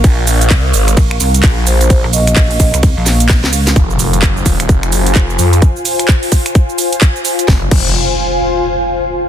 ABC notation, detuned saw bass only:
X:1
M:4/4
L:1/8
Q:"Swing 16ths" 1/4=129
K:Fm
V:1 name="Detuned saw bass" clef=bass
B,,,2 C,, A,,, z2 B,,, B,,, | z8 | F,,,2 _G,,, E,,, F,,, G,,, F,,, F,, | z8 |
F,,, F,,, z6 |]